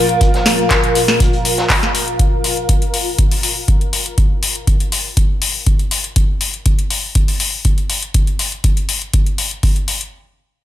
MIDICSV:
0, 0, Header, 1, 4, 480
1, 0, Start_track
1, 0, Tempo, 495868
1, 203, Time_signature, 4, 2, 24, 8
1, 10300, End_track
2, 0, Start_track
2, 0, Title_t, "Ambient pad"
2, 0, Program_c, 0, 92
2, 0, Note_on_c, 0, 65, 87
2, 0, Note_on_c, 0, 70, 91
2, 0, Note_on_c, 0, 77, 73
2, 2124, Note_off_c, 0, 65, 0
2, 2124, Note_off_c, 0, 70, 0
2, 2125, Note_off_c, 0, 77, 0
2, 10300, End_track
3, 0, Start_track
3, 0, Title_t, "Analog synth pad"
3, 0, Program_c, 1, 89
3, 0, Note_on_c, 1, 46, 84
3, 0, Note_on_c, 1, 53, 76
3, 0, Note_on_c, 1, 65, 78
3, 0, Note_on_c, 1, 70, 94
3, 5925, Note_off_c, 1, 46, 0
3, 5925, Note_off_c, 1, 53, 0
3, 5925, Note_off_c, 1, 65, 0
3, 5925, Note_off_c, 1, 70, 0
3, 10300, End_track
4, 0, Start_track
4, 0, Title_t, "Drums"
4, 89, Note_on_c, 9, 42, 51
4, 186, Note_off_c, 9, 42, 0
4, 202, Note_on_c, 9, 42, 86
4, 204, Note_off_c, 9, 42, 0
4, 204, Note_on_c, 9, 42, 73
4, 205, Note_on_c, 9, 36, 124
4, 301, Note_off_c, 9, 42, 0
4, 302, Note_off_c, 9, 36, 0
4, 329, Note_on_c, 9, 42, 32
4, 333, Note_on_c, 9, 38, 40
4, 426, Note_off_c, 9, 42, 0
4, 430, Note_off_c, 9, 38, 0
4, 443, Note_on_c, 9, 38, 78
4, 443, Note_on_c, 9, 46, 104
4, 450, Note_on_c, 9, 42, 62
4, 540, Note_off_c, 9, 38, 0
4, 540, Note_off_c, 9, 46, 0
4, 547, Note_off_c, 9, 42, 0
4, 569, Note_on_c, 9, 42, 32
4, 666, Note_off_c, 9, 42, 0
4, 683, Note_on_c, 9, 38, 111
4, 683, Note_on_c, 9, 39, 113
4, 683, Note_on_c, 9, 42, 75
4, 685, Note_off_c, 9, 42, 0
4, 685, Note_on_c, 9, 36, 105
4, 685, Note_on_c, 9, 42, 79
4, 779, Note_off_c, 9, 39, 0
4, 780, Note_off_c, 9, 38, 0
4, 781, Note_off_c, 9, 42, 0
4, 782, Note_off_c, 9, 36, 0
4, 809, Note_on_c, 9, 42, 49
4, 906, Note_off_c, 9, 42, 0
4, 923, Note_on_c, 9, 46, 101
4, 928, Note_on_c, 9, 42, 65
4, 1020, Note_off_c, 9, 46, 0
4, 1025, Note_off_c, 9, 42, 0
4, 1048, Note_on_c, 9, 38, 63
4, 1145, Note_off_c, 9, 38, 0
4, 1164, Note_on_c, 9, 42, 73
4, 1165, Note_on_c, 9, 36, 116
4, 1171, Note_off_c, 9, 42, 0
4, 1171, Note_on_c, 9, 42, 91
4, 1262, Note_off_c, 9, 36, 0
4, 1267, Note_off_c, 9, 42, 0
4, 1289, Note_on_c, 9, 42, 38
4, 1386, Note_off_c, 9, 42, 0
4, 1404, Note_on_c, 9, 46, 111
4, 1409, Note_on_c, 9, 42, 60
4, 1501, Note_off_c, 9, 46, 0
4, 1506, Note_off_c, 9, 42, 0
4, 1528, Note_on_c, 9, 38, 52
4, 1530, Note_on_c, 9, 42, 32
4, 1625, Note_off_c, 9, 38, 0
4, 1627, Note_off_c, 9, 42, 0
4, 1643, Note_on_c, 9, 38, 103
4, 1644, Note_on_c, 9, 39, 116
4, 1645, Note_on_c, 9, 36, 100
4, 1645, Note_on_c, 9, 46, 62
4, 1648, Note_on_c, 9, 42, 78
4, 1740, Note_off_c, 9, 38, 0
4, 1741, Note_off_c, 9, 39, 0
4, 1742, Note_off_c, 9, 36, 0
4, 1742, Note_off_c, 9, 46, 0
4, 1745, Note_off_c, 9, 42, 0
4, 1771, Note_on_c, 9, 38, 36
4, 1771, Note_on_c, 9, 42, 33
4, 1867, Note_off_c, 9, 38, 0
4, 1867, Note_off_c, 9, 42, 0
4, 1885, Note_on_c, 9, 46, 109
4, 1887, Note_on_c, 9, 42, 66
4, 1982, Note_off_c, 9, 46, 0
4, 1984, Note_off_c, 9, 42, 0
4, 2010, Note_on_c, 9, 42, 46
4, 2107, Note_off_c, 9, 42, 0
4, 2124, Note_on_c, 9, 42, 72
4, 2125, Note_on_c, 9, 36, 117
4, 2221, Note_off_c, 9, 42, 0
4, 2222, Note_off_c, 9, 36, 0
4, 2364, Note_on_c, 9, 46, 100
4, 2461, Note_off_c, 9, 46, 0
4, 2489, Note_on_c, 9, 42, 32
4, 2586, Note_off_c, 9, 42, 0
4, 2603, Note_on_c, 9, 42, 74
4, 2605, Note_on_c, 9, 36, 98
4, 2700, Note_off_c, 9, 42, 0
4, 2702, Note_off_c, 9, 36, 0
4, 2729, Note_on_c, 9, 42, 47
4, 2826, Note_off_c, 9, 42, 0
4, 2843, Note_on_c, 9, 46, 96
4, 2940, Note_off_c, 9, 46, 0
4, 3083, Note_on_c, 9, 42, 69
4, 3085, Note_on_c, 9, 36, 111
4, 3180, Note_off_c, 9, 42, 0
4, 3182, Note_off_c, 9, 36, 0
4, 3209, Note_on_c, 9, 46, 59
4, 3306, Note_off_c, 9, 46, 0
4, 3323, Note_on_c, 9, 46, 105
4, 3420, Note_off_c, 9, 46, 0
4, 3564, Note_on_c, 9, 42, 72
4, 3565, Note_on_c, 9, 36, 98
4, 3661, Note_off_c, 9, 42, 0
4, 3662, Note_off_c, 9, 36, 0
4, 3690, Note_on_c, 9, 42, 32
4, 3787, Note_off_c, 9, 42, 0
4, 3804, Note_on_c, 9, 46, 103
4, 3901, Note_off_c, 9, 46, 0
4, 3929, Note_on_c, 9, 42, 50
4, 4026, Note_off_c, 9, 42, 0
4, 4044, Note_on_c, 9, 42, 70
4, 4045, Note_on_c, 9, 36, 109
4, 4141, Note_off_c, 9, 42, 0
4, 4142, Note_off_c, 9, 36, 0
4, 4285, Note_on_c, 9, 46, 98
4, 4382, Note_off_c, 9, 46, 0
4, 4410, Note_on_c, 9, 42, 33
4, 4507, Note_off_c, 9, 42, 0
4, 4525, Note_on_c, 9, 36, 98
4, 4525, Note_on_c, 9, 42, 77
4, 4621, Note_off_c, 9, 42, 0
4, 4622, Note_off_c, 9, 36, 0
4, 4650, Note_on_c, 9, 42, 48
4, 4747, Note_off_c, 9, 42, 0
4, 4764, Note_on_c, 9, 46, 99
4, 4861, Note_off_c, 9, 46, 0
4, 5004, Note_on_c, 9, 42, 75
4, 5005, Note_on_c, 9, 36, 112
4, 5101, Note_off_c, 9, 42, 0
4, 5102, Note_off_c, 9, 36, 0
4, 5243, Note_on_c, 9, 46, 103
4, 5340, Note_off_c, 9, 46, 0
4, 5484, Note_on_c, 9, 42, 74
4, 5485, Note_on_c, 9, 36, 96
4, 5580, Note_off_c, 9, 42, 0
4, 5582, Note_off_c, 9, 36, 0
4, 5609, Note_on_c, 9, 42, 33
4, 5706, Note_off_c, 9, 42, 0
4, 5723, Note_on_c, 9, 46, 97
4, 5819, Note_off_c, 9, 46, 0
4, 5848, Note_on_c, 9, 42, 49
4, 5945, Note_off_c, 9, 42, 0
4, 5963, Note_on_c, 9, 42, 76
4, 5965, Note_on_c, 9, 36, 111
4, 6060, Note_off_c, 9, 42, 0
4, 6062, Note_off_c, 9, 36, 0
4, 6203, Note_on_c, 9, 46, 96
4, 6299, Note_off_c, 9, 46, 0
4, 6328, Note_on_c, 9, 42, 34
4, 6425, Note_off_c, 9, 42, 0
4, 6443, Note_on_c, 9, 42, 75
4, 6445, Note_on_c, 9, 36, 94
4, 6540, Note_off_c, 9, 42, 0
4, 6542, Note_off_c, 9, 36, 0
4, 6569, Note_on_c, 9, 42, 50
4, 6666, Note_off_c, 9, 42, 0
4, 6684, Note_on_c, 9, 46, 94
4, 6781, Note_off_c, 9, 46, 0
4, 6923, Note_on_c, 9, 42, 75
4, 6925, Note_on_c, 9, 36, 103
4, 7020, Note_off_c, 9, 42, 0
4, 7022, Note_off_c, 9, 36, 0
4, 7049, Note_on_c, 9, 46, 55
4, 7146, Note_off_c, 9, 46, 0
4, 7163, Note_on_c, 9, 46, 103
4, 7260, Note_off_c, 9, 46, 0
4, 7403, Note_on_c, 9, 42, 78
4, 7405, Note_on_c, 9, 36, 90
4, 7500, Note_off_c, 9, 42, 0
4, 7502, Note_off_c, 9, 36, 0
4, 7529, Note_on_c, 9, 42, 33
4, 7626, Note_off_c, 9, 42, 0
4, 7643, Note_on_c, 9, 46, 96
4, 7740, Note_off_c, 9, 46, 0
4, 7769, Note_on_c, 9, 42, 50
4, 7865, Note_off_c, 9, 42, 0
4, 7883, Note_on_c, 9, 42, 77
4, 7885, Note_on_c, 9, 36, 110
4, 7980, Note_off_c, 9, 42, 0
4, 7982, Note_off_c, 9, 36, 0
4, 8009, Note_on_c, 9, 42, 34
4, 8106, Note_off_c, 9, 42, 0
4, 8124, Note_on_c, 9, 46, 96
4, 8221, Note_off_c, 9, 46, 0
4, 8249, Note_on_c, 9, 42, 34
4, 8346, Note_off_c, 9, 42, 0
4, 8363, Note_on_c, 9, 42, 76
4, 8365, Note_on_c, 9, 36, 94
4, 8460, Note_off_c, 9, 42, 0
4, 8462, Note_off_c, 9, 36, 0
4, 8489, Note_on_c, 9, 42, 52
4, 8586, Note_off_c, 9, 42, 0
4, 8603, Note_on_c, 9, 46, 95
4, 8700, Note_off_c, 9, 46, 0
4, 8729, Note_on_c, 9, 42, 36
4, 8826, Note_off_c, 9, 42, 0
4, 8843, Note_on_c, 9, 42, 80
4, 8845, Note_on_c, 9, 36, 105
4, 8939, Note_off_c, 9, 42, 0
4, 8942, Note_off_c, 9, 36, 0
4, 8968, Note_on_c, 9, 42, 36
4, 9065, Note_off_c, 9, 42, 0
4, 9083, Note_on_c, 9, 46, 97
4, 9179, Note_off_c, 9, 46, 0
4, 9208, Note_on_c, 9, 42, 34
4, 9305, Note_off_c, 9, 42, 0
4, 9323, Note_on_c, 9, 46, 56
4, 9325, Note_on_c, 9, 36, 93
4, 9420, Note_off_c, 9, 46, 0
4, 9422, Note_off_c, 9, 36, 0
4, 9448, Note_on_c, 9, 42, 35
4, 9545, Note_off_c, 9, 42, 0
4, 9563, Note_on_c, 9, 46, 96
4, 9660, Note_off_c, 9, 46, 0
4, 9688, Note_on_c, 9, 42, 53
4, 9785, Note_off_c, 9, 42, 0
4, 10300, End_track
0, 0, End_of_file